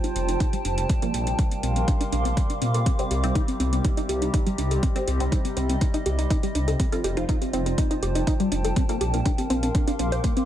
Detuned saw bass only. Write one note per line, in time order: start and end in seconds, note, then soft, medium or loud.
0.16 0.36 F1 medium
0.65 0.85 F1 loud
1.14 1.34 A#1 loud
1.63 1.83 A#1 medium
2.12 2.32 A#1 loud
2.62 2.82 A#2 medium
3.11 3.31 C2 loud
3.60 3.80 C2 loud
4.09 4.29 C2 medium
4.58 4.78 C2 loud
5.08 5.27 C2 loud
5.57 5.77 C2 medium
6.06 6.26 C2 medium
6.55 6.75 C2 loud
7.04 7.24 F1 loud
7.53 7.73 F1 loud
8.03 8.23 F1 medium
8.52 8.72 F1 loud
9.01 9.21 A#1 loud
9.50 9.70 A#1 loud
9.99 10.19 A#1 medium